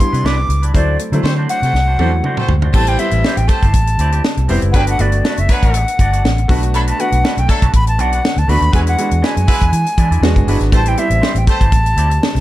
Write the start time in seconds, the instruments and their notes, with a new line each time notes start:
Already playing: flute C6
0.00 grand piano G3 B3 D4 E4, kick, closed hi-hat
0.13 fingered electric bass C3, clean electric guitar G3 D4 E4 B4, closed hi-hat
0.24 fingered electric bass C2, clean electric guitar G3 D4 E4 B4, flute D6, snare
0.38 muted clean electric guitar stroke
0.49 fingered electric bass C#2, muted clean electric guitar stroke, closed hi-hat
0.62 clean electric guitar G3 D4 E4 B4, closed hi-hat
0.74 fingered electric bass D2, grand piano F#3 A3 C4 E4, clean electric guitar A3 D4 F#4 C5, flute D5, kick, closed hi-hat
0.99 muted clean electric guitar stroke, closed hi-hat
1.12 fingered electric bass D3, grand piano F#3 A3 C4 E4, clean electric guitar A3 D4 F#4 C5, closed hi-hat
1.23 fingered electric bass D3, horn section A3 C4 F#4 C5, snare
1.37 clean electric guitar A3 D4 F#4 C5
1.49 clean electric guitar A3 D4 F#4 C5, flute F#5, closed hi-hat
1.62 fingered electric bass C3, horn section A3 C4 F#4 C5, muted clean electric guitar stroke, closed hi-hat
1.73 fingered electric bass C2, muted clean electric guitar stroke, snare
1.87 clean electric guitar A3 D4 F#4 C5
1.99 fingered electric bass E2, grand piano F#3 A3 C4 E4, clean electric guitar A3 D4 F#4 C5, horn section A3 C4 F#4 C5, high tom
2.13 muted clean electric guitar stroke
2.24 clean electric guitar A3 D4 F#4 C5, mid tom
2.37 horn section A3 C4 F#4 C5, muted clean electric guitar stroke, mid tom
2.49 fingered electric bass D2, muted clean electric guitar stroke, floor tom
2.62 clean electric guitar A3 D4 F#4 C5, floor tom
2.73 fingered electric bass A1, grand piano G3 B3 C4 E4, horn section A3 C4 G4 C5, flute A5, muted clean electric guitar stroke, kick, crash
2.87 clean electric guitar C4 E4 G4 C5, flute G5, closed hi-hat
2.98 grand piano G3 B3 C4 E4, clean electric guitar C4 E4 G4 C5, flute E5, closed hi-hat
3.11 fingered electric bass A1, muted clean electric guitar stroke, closed hi-hat
3.24 clean electric guitar C4 E4 G4 C5, snare
3.37 fingered electric bass A1, flute G5, muted clean electric guitar stroke, closed hi-hat
3.48 horn section A3 C4 G4 C5, flute A5, kick, closed hi-hat
3.63 fingered electric bass G1, clean electric guitar C4 E4 G4 C5, kick, closed hi-hat
3.74 fingered electric bass A1, muted clean electric guitar stroke, kick, closed hi-hat
3.87 muted clean electric guitar stroke, closed hi-hat
3.98 fingered electric bass D2, clean electric guitar C4 E4 G4 D5, closed hi-hat
4.12 clean electric guitar C4 E4 G4 D5, closed hi-hat
4.24 snare
4.37 fingered electric bass C2, muted clean electric guitar stroke, closed hi-hat
4.48 fingered electric bass F1, grand piano G3 B3 C4 E4, clean electric guitar C4 E4 G4 C5, open hi-hat
4.62 fingered electric bass F#1, muted clean electric guitar stroke, closed hi-hat
4.72 fingered electric bass G1, horn section F#3 B3 D4 B4, grand piano A3 B3 D4 F#4, flute F#5, kick, closed hi-hat
4.76 flute G5
4.87 clean electric guitar A3 D4 F#4 B4, flute F#5, closed hi-hat
4.98 fingered electric bass G1, grand piano A3 B3 D4 F#4, clean electric guitar A3 D4 F#4 B4, flute D5, closed hi-hat
5.12 muted clean electric guitar stroke, closed hi-hat
5.24 clean electric guitar A3 D4 F#4 B4, snare
5.37 fingered electric bass F#1, flute E5, muted clean electric guitar stroke, closed hi-hat
5.49 horn section F#3 B3 D4 B4, muted clean electric guitar stroke, kick, closed hi-hat
5.53 flute F#5
5.63 fingered electric bass A1, clean electric guitar A3 D4 F#4 B4, kick, closed hi-hat
5.74 muted clean electric guitar stroke, closed hi-hat
5.88 muted clean electric guitar stroke, closed hi-hat
5.99 fingered electric bass G1, clean electric guitar A3 D4 F#4 D5, kick, closed hi-hat
6.13 clean electric guitar A3 D4 F#4 D5, closed hi-hat
6.24 fingered electric bass A1, muted clean electric guitar stroke, snare
6.38 muted clean electric guitar stroke, closed hi-hat
6.48 fingered electric bass B1, grand piano A3 B3 D4 F#4, clean electric guitar A3 D4 F#4 B4, kick, open hi-hat
6.63 muted clean electric guitar stroke, closed hi-hat
6.74 horn section F#3 A3 D4 A4, flute B5, muted clean electric guitar stroke, closed hi-hat
6.87 clean electric guitar A3 D4 F#4 B4, flute A5, closed hi-hat
6.99 clean electric guitar A3 D4 F#4 B4, grand piano A3 B3 D4 F#4, flute F#5, closed hi-hat
7.12 fingered electric bass B1, muted clean electric guitar stroke, closed hi-hat
7.24 clean electric guitar A3 D4 F#4 B4, snare
7.37 fingered electric bass B1, flute G5, muted clean electric guitar stroke, closed hi-hat
7.48 horn section F#3 A3 D4 A4, flute A5, kick, closed hi-hat
7.62 fingered electric bass B1, clean electric guitar A3 D4 F#4 B4, kick, closed hi-hat
7.73 fingered electric bass A1, flute B5, muted clean electric guitar stroke, kick, closed hi-hat
7.87 flute A5, muted clean electric guitar stroke, closed hi-hat
7.98 fingered electric bass B1, clean electric guitar A3 D4 F#4 D5, flute F#5, closed hi-hat
8.12 clean electric guitar A3 D4 F#4 D5, closed hi-hat
8.24 muted clean electric guitar stroke, snare
8.37 fingered electric bass D2, flute A5, muted clean electric guitar stroke, closed hi-hat
8.48 fingered electric bass D2, clean electric guitar A3 D4 F#4 B4, grand piano A3 B3 D4 F#4, flute B5, open hi-hat
8.61 fingered electric bass D#2, muted clean electric guitar stroke, closed hi-hat
8.72 fingered electric bass E2, horn section G#3 B3 E4 B4, grand piano G#3 B3 D4 F#4, flute G#5, muted clean electric guitar stroke, kick, closed hi-hat
8.86 clean electric guitar G#3 D4 E4 B4, flute F#5, closed hi-hat
8.97 clean electric guitar G#3 D4 E4 B4, grand piano G#3 B3 D4 F#4, closed hi-hat
9.11 fingered electric bass E2, muted clean electric guitar stroke, closed hi-hat
9.22 clean electric guitar G#3 D4 E4 B4, flute G#5, snare
9.36 fingered electric bass F#2, muted clean electric guitar stroke, closed hi-hat
9.47 horn section G#3 B3 E4 B4, muted clean electric guitar stroke, kick, open hi-hat
9.61 fingered electric bass E2, clean electric guitar G#3 D4 E4 B4, kick, closed hi-hat
9.73 fingered electric bass E3, muted clean electric guitar stroke, closed hi-hat
9.86 muted clean electric guitar stroke, closed hi-hat
9.97 fingered electric bass E3, clean electric guitar G#3 D4 E4 D5, kick, closed hi-hat
10.11 fingered electric bass E2, clean electric guitar G#3 D4 E4 D5, closed hi-hat
10.21 fingered electric bass E2, grand piano G#3 B3 D4 F#4, snare
10.36 fingered electric bass F#1, muted clean electric guitar stroke, kick, closed hi-hat
10.47 fingered electric bass G1, clean electric guitar G#3 D4 E4 B4, grand piano G#3 B3 D4 F#4, open hi-hat
10.60 fingered electric bass G#1, muted clean electric guitar stroke, snare, closed hi-hat
10.72 fingered electric bass A1, grand piano G3 B3 C4 E4, horn section A3 C4 G4 C5, flute A5, muted clean electric guitar stroke, kick, closed hi-hat
10.86 clean electric guitar C4 E4 G4 C5, flute G5, closed hi-hat
10.97 grand piano G3 B3 C4 E4, clean electric guitar C4 E4 G4 C5, flute E5, closed hi-hat
11.10 fingered electric bass A1, muted clean electric guitar stroke, closed hi-hat
11.21 clean electric guitar C4 E4 G4 C5, snare
11.35 fingered electric bass A1, flute G5, muted clean electric guitar stroke, closed hi-hat
11.47 horn section A3 C4 G4 C5, flute A5, muted clean electric guitar stroke, kick, closed hi-hat
11.61 fingered electric bass G1, clean electric guitar C4 E4 G4 C5, kick, closed hi-hat
11.72 fingered electric bass A1, muted clean electric guitar stroke, kick, closed hi-hat
11.86 muted clean electric guitar stroke, closed hi-hat
11.96 fingered electric bass D2, clean electric guitar C4 E4 G4 D5, closed hi-hat
12.10 muted clean electric guitar stroke, closed hi-hat
12.22 muted clean electric guitar stroke, snare
12.35 fingered electric bass C2, muted clean electric guitar stroke, snare, closed hi-hat